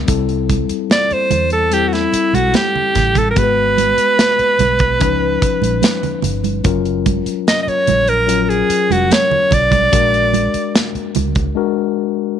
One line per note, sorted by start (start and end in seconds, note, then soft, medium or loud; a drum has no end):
0.00 0.10 G#3 medium
0.00 0.11 B3 medium
0.00 0.10 A#4 medium
0.07 0.64 C2 medium
0.07 1.52 G3 medium
0.07 1.53 C4 medium
0.07 1.53 E4 medium
0.07 1.53 A4 medium
0.07 kick loud
0.07 closed hi-hat medium
0.07 muted conga soft
0.29 closed hi-hat soft
0.49 kick medium
0.49 closed hi-hat medium
0.49 muted conga soft
0.49 high conga medium
0.70 muted fingered electric bass stroke soft
0.70 closed hi-hat soft
0.90 1.14 D5 medium
0.90 snare loud
0.90 closed hi-hat medium
0.90 muted conga soft
1.11 1.52 C5 loud
1.11 muted fingered electric bass stroke soft
1.11 closed hi-hat soft
1.31 2.05 E2 medium
1.31 closed hi-hat medium
1.31 high conga medium
1.31 low conga medium
1.50 1.75 A4 medium
1.50 closed hi-hat soft
1.71 3.17 G3 medium
1.71 3.17 C4 medium
1.71 3.18 E4 medium
1.71 1.89 G4 medium
1.71 3.18 A4 medium
1.71 closed hi-hat medium
1.71 muted conga soft
1.88 1.95 F#4 medium
1.93 2.36 E4 medium
1.93 snare soft
1.93 closed hi-hat soft
2.12 muted fingered electric bass stroke soft
2.12 closed hi-hat medium
2.12 muted conga soft
2.33 2.52 B1 medium
2.33 2.57 F#4 medium
2.33 closed hi-hat medium
2.33 high conga medium
2.54 3.19 G4 medium
2.54 snare loud
2.54 closed hi-hat medium
2.54 high conga medium
2.75 low conga medium
2.95 3.33 A1 medium
2.95 kick medium
2.95 snare soft
2.95 closed hi-hat medium
2.95 low conga medium
3.15 3.30 A4 medium
3.15 kick medium
3.15 closed hi-hat soft
3.15 high conga medium
3.31 3.40 A#4 medium
3.36 3.92 G#1 medium
3.36 4.81 G#3 medium
3.36 4.81 B3 medium
3.36 4.81 F#4 medium
3.36 3.44 G#4 medium
3.36 6.25 B4 loud
3.36 kick loud
3.36 closed hi-hat medium
3.44 4.85 B4 medium
3.78 closed hi-hat medium
3.78 high conga medium
3.97 muted fingered electric bass stroke soft
3.97 closed hi-hat soft
4.19 snare loud
4.19 closed hi-hat medium
4.19 muted conga soft
4.39 muted fingered electric bass stroke soft
4.39 closed hi-hat soft
4.59 5.01 B1 medium
4.59 closed hi-hat medium
4.59 muted conga soft
4.59 high conga medium
4.59 low conga medium
4.79 kick loud
4.79 closed hi-hat soft
5.00 5.38 C#2 medium
5.00 6.45 F3 medium
5.00 6.45 C#4 medium
5.00 6.45 D#4 medium
5.00 6.45 B4 medium
5.00 kick medium
5.00 closed hi-hat medium
5.00 muted conga soft
5.42 muted fingered electric bass stroke soft
5.42 kick medium
5.42 closed hi-hat medium
5.62 5.80 A#1 medium
5.62 closed hi-hat medium
5.62 high conga medium
5.82 snare loud
5.82 closed hi-hat medium
5.82 high conga medium
6.03 closed hi-hat soft
6.03 low conga medium
6.22 6.61 G1 medium
6.22 closed hi-hat medium
6.22 muted conga soft
6.22 low conga medium
6.44 closed hi-hat soft
6.44 high conga medium
6.64 7.20 F#1 medium
6.64 8.09 F#3 medium
6.64 8.09 C#4 medium
6.64 8.10 F4 medium
6.64 8.10 A#4 medium
6.64 kick loud
6.64 closed hi-hat medium
6.64 muted conga soft
6.85 closed hi-hat soft
7.06 kick medium
7.06 closed hi-hat medium
7.06 muted conga soft
7.06 high conga medium
7.26 muted fingered electric bass stroke soft
7.26 closed hi-hat soft
7.47 7.60 D#5 medium
7.47 snare loud
7.47 closed hi-hat medium
7.47 muted conga soft
7.63 7.70 D#5 medium
7.67 8.11 C#5 loud
7.67 muted fingered electric bass stroke soft
7.67 closed hi-hat soft
7.87 8.61 A#1 medium
7.87 closed hi-hat medium
7.87 muted conga soft
7.87 high conga medium
7.87 low conga medium
8.08 8.43 A#4 medium
8.08 closed hi-hat soft
8.27 9.72 F#3 medium
8.27 9.73 C#4 medium
8.27 9.73 F4 medium
8.27 9.73 A#4 medium
8.27 closed hi-hat medium
8.27 muted conga soft
8.43 8.51 A#4 medium
8.49 8.93 G#4 medium
8.49 closed hi-hat soft
8.70 muted fingered electric bass stroke soft
8.70 closed hi-hat medium
8.90 9.09 F1 medium
8.90 9.14 F#4 medium
8.90 closed hi-hat medium
8.90 high conga medium
9.11 9.55 C#5 loud
9.11 snare loud
9.11 closed hi-hat medium
9.11 muted conga soft
9.11 high conga medium
9.31 low conga medium
9.51 9.89 B1 medium
9.51 10.75 D5 medium
9.51 kick medium
9.51 closed hi-hat medium
9.51 muted conga soft
9.51 low conga medium
9.71 kick medium
9.71 closed hi-hat soft
9.71 high conga medium
9.92 10.48 A#1 loud
9.92 11.37 G#3 medium
9.92 11.37 D4 medium
9.92 11.37 F#4 medium
9.92 11.37 A#4 medium
9.92 kick loud
9.92 closed hi-hat medium
9.92 muted conga soft
10.14 closed hi-hat soft
10.34 closed hi-hat medium
10.34 muted conga soft
10.34 high conga medium
10.54 muted fingered electric bass stroke soft
10.54 closed hi-hat medium
10.75 snare loud
10.75 closed hi-hat medium
10.75 muted conga soft
10.95 muted fingered electric bass stroke soft
10.95 closed hi-hat soft
11.15 11.52 C#2 medium
11.15 closed hi-hat medium
11.15 high conga medium
11.15 low conga medium
11.35 kick medium
11.35 closed hi-hat soft
11.55 12.40 G#3 medium
11.55 12.40 D4 medium
11.55 12.40 F#4 medium
11.55 12.40 A#4 medium